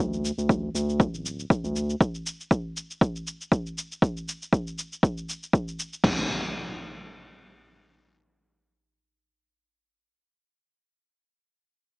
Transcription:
0.00 0.32 D2 medium
0.00 shaker soft
0.13 shaker soft
0.25 shaker medium
0.38 0.69 D2 medium
0.38 shaker soft
0.49 kick medium
0.49 shaker soft
0.75 1.07 D2 loud
0.75 shaker medium
0.89 shaker soft
1.00 kick loud
1.00 shaker soft
1.14 1.45 D1 loud
1.14 shaker soft
1.26 shaker medium
1.40 shaker soft
1.50 kick loud
1.50 shaker soft
1.64 1.95 D2 medium
1.64 shaker soft
1.76 shaker medium
1.90 shaker soft
2.01 kick loud
2.01 shaker soft
2.15 shaker soft
2.26 shaker medium
2.40 shaker soft
2.51 kick medium
2.51 shaker soft
2.77 shaker medium
2.91 shaker soft
3.01 kick loud
3.01 shaker soft
3.16 shaker soft
3.27 shaker medium
3.41 shaker soft
3.52 kick medium
3.52 shaker soft
3.66 shaker soft
3.78 shaker medium
3.92 shaker soft
4.02 kick loud
4.02 shaker soft
4.17 shaker soft
4.29 shaker medium
4.42 shaker soft
4.53 kick medium
4.53 shaker soft
4.67 shaker soft
4.78 shaker medium
4.93 shaker soft
5.03 kick loud
5.03 shaker soft
5.18 shaker soft
5.29 shaker medium
5.43 shaker soft
5.53 kick loud
5.53 shaker soft
5.68 shaker soft
5.79 shaker medium
5.93 shaker soft
6.04 kick loud
6.04 crash medium
6.04 impact medium

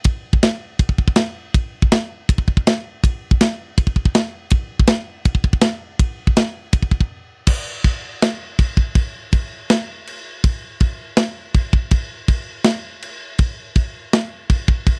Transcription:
0.04 kick loud
0.04 ride bell medium
0.33 kick medium
0.43 snare loud
0.43 ride bell medium
0.79 kick loud
0.79 ride bell medium
0.89 kick medium
0.98 kick medium
1.08 kick medium
1.16 snare medium
1.16 ride bell medium
1.54 kick loud
1.54 ride bell medium
1.82 kick medium
1.92 snare loud
1.92 ride bell medium
2.29 kick loud
2.29 ride bell medium
2.38 kick medium
2.48 kick medium
2.57 kick medium
2.67 snare loud
2.67 ride bell medium
3.04 kick loud
3.04 ride bell medium
3.31 kick medium
3.41 snare loud
3.41 ride bell medium
3.78 kick loud
3.78 ride bell medium
3.87 kick medium
3.96 kick medium
4.05 kick medium
4.15 snare loud
4.15 ride bell medium
4.50 kick loud
4.50 ride bell medium
4.79 kick medium
4.87 snare loud
4.87 ride bell medium
5.25 kick loud
5.25 ride bell medium
5.35 kick medium
5.44 kick medium
5.53 kick medium
5.61 snare loud
5.61 ride bell medium
5.99 kick loud
5.99 ride bell medium
6.27 kick medium
6.37 snare loud
6.37 ride bell medium
6.73 kick loud
6.73 ride bell medium
6.82 kick medium
6.91 kick medium
7.01 kick medium
7.47 kick loud
7.47 crash loud
7.47 crash medium
7.84 kick medium
7.84 crash medium
8.22 snare loud
8.22 crash medium
8.59 kick medium
8.59 crash medium
8.77 kick medium
8.95 kick loud
8.95 crash medium
9.33 kick loud
9.33 crash medium
9.70 snare loud
9.70 crash medium
10.07 crash medium
10.44 kick loud
10.44 crash medium
10.80 kick medium
10.80 crash medium
11.17 snare loud
11.17 crash medium
11.54 kick medium
11.54 crash medium
11.73 kick medium
11.91 kick loud
11.91 crash medium
12.28 kick medium
12.28 crash medium
12.64 snare loud
12.64 crash medium
13.02 crash medium
13.38 kick loud
13.38 crash medium
13.75 kick medium
13.75 crash medium
14.13 snare loud
14.13 crash medium
14.50 kick medium
14.50 crash medium
14.68 kick medium
14.87 kick loud
14.87 crash medium

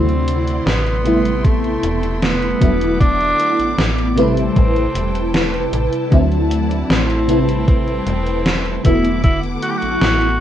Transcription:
0.00 0.61 D2 loud
0.00 0.98 C3 medium
0.00 0.97 D3 medium
0.00 0.98 F#3 medium
0.00 0.98 A3 medium
0.00 0.68 C4 loud
0.00 0.99 E4 medium
0.00 1.04 E4 medium
0.00 1.04 D5 medium
0.00 1.04 F#5 medium
0.00 2.59 C6 medium
0.09 closed hi-hat soft
0.28 closed hi-hat medium
0.48 closed hi-hat medium
0.66 1.77 A1 loud
0.66 1.46 B3 loud
0.66 snare loud
0.66 closed hi-hat medium
0.87 closed hi-hat soft
1.04 2.53 C3 medium
1.04 2.53 G3 medium
1.04 2.54 A3 medium
1.04 2.54 B3 medium
1.04 4.14 E4 medium
1.04 2.55 E4 medium
1.04 4.14 A4 medium
1.04 2.60 G5 medium
1.04 closed hi-hat medium
1.25 closed hi-hat medium
1.44 2.22 A3 loud
1.44 kick loud
1.44 closed hi-hat medium
1.64 closed hi-hat soft
1.83 2.55 E1 loud
1.83 closed hi-hat loud
2.03 closed hi-hat soft
2.22 2.96 B3 loud
2.22 snare loud
2.22 closed hi-hat medium
2.42 closed hi-hat soft
2.60 3.33 E1 loud
2.60 4.09 D3 medium
2.60 4.09 F#3 medium
2.60 4.10 A3 medium
2.60 4.10 B3 medium
2.60 4.10 E4 medium
2.60 4.16 F#5 medium
2.60 4.16 D6 medium
2.60 kick loud
2.60 closed hi-hat medium
2.81 closed hi-hat medium
3.00 3.86 D4 loud
3.00 kick loud
3.00 closed hi-hat medium
3.21 closed hi-hat soft
3.40 closed hi-hat medium
3.59 3.75 A1 soft
3.59 closed hi-hat medium
3.78 4.50 A1 loud
3.78 snare loud
3.78 closed hi-hat medium
3.98 closed hi-hat soft
4.16 6.04 C3 medium
4.16 6.04 G3 medium
4.16 6.04 A3 medium
4.16 5.69 C4 loud
4.16 10.40 E4 medium
4.16 6.05 E4 loud
4.16 6.10 A4 medium
4.16 6.05 B4 medium
4.16 6.10 G5 medium
4.16 8.81 A5 medium
4.16 closed hi-hat medium
4.37 closed hi-hat medium
4.56 4.88 A1 loud
4.56 kick loud
4.56 closed hi-hat medium
4.76 closed hi-hat soft
4.95 5.67 E1 medium
4.95 closed hi-hat loud
5.15 closed hi-hat medium
5.34 snare loud
5.34 closed hi-hat medium
5.54 closed hi-hat soft
5.73 5.89 A1 medium
5.73 closed hi-hat medium
5.93 closed hi-hat medium
6.11 6.84 D2 medium
6.11 7.21 D3 medium
6.11 7.21 F#3 medium
6.11 7.21 A3 medium
6.11 7.22 C4 medium
6.11 7.22 E4 medium
6.11 7.28 D5 medium
6.11 7.28 F#5 medium
6.11 kick loud
6.11 closed hi-hat medium
6.32 closed hi-hat soft
6.51 closed hi-hat medium
6.71 closed hi-hat medium
6.90 8.01 A1 medium
6.90 7.64 C4 medium
6.90 snare loud
6.90 closed hi-hat medium
7.10 closed hi-hat soft
7.27 8.76 C3 medium
7.27 8.77 G3 medium
7.27 8.77 A3 medium
7.27 8.78 E4 medium
7.27 8.83 A4 medium
7.27 8.78 B4 medium
7.27 8.83 G5 medium
7.27 closed hi-hat medium
7.49 closed hi-hat medium
7.68 8.81 C4 loud
7.68 kick loud
7.68 closed hi-hat medium
7.88 closed hi-hat soft
8.07 8.79 E1 loud
8.07 closed hi-hat medium
8.27 closed hi-hat medium
8.46 snare loud
8.46 closed hi-hat medium
8.66 closed hi-hat soft
8.83 9.57 E1 medium
8.83 10.32 D3 medium
8.83 10.33 F#3 medium
8.83 10.33 A3 medium
8.83 10.33 B3 medium
8.83 9.21 E4 loud
8.83 10.34 E4 medium
8.83 10.40 A4 medium
8.83 10.39 F#5 medium
8.83 10.39 D6 medium
8.83 kick loud
8.83 closed hi-hat medium
9.04 closed hi-hat medium
9.24 9.40 E4 loud
9.24 kick loud
9.24 closed hi-hat medium
9.43 closed hi-hat soft
9.62 9.71 F#4 loud
9.62 closed hi-hat medium
9.69 9.78 G4 medium
9.77 10.40 F#4 loud
9.82 9.98 A1 soft
9.82 closed hi-hat medium
10.01 10.40 A1 loud
10.01 snare loud
10.01 closed hi-hat soft
10.21 closed hi-hat soft

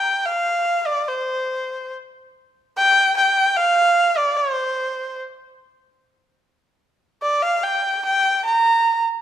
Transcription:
0.00 0.27 G5 medium
0.25 0.88 F5 medium
0.86 1.10 D5 medium
1.09 1.93 C5 medium
2.77 3.15 G5 loud
3.16 3.58 G5 medium
3.57 4.19 F5 medium
4.17 4.38 D5 medium
4.37 5.19 C5 medium
7.22 7.44 D5 medium
7.42 7.64 F5 medium
7.63 8.04 G5 medium
8.05 8.43 G5 medium
8.45 9.04 A#5 medium

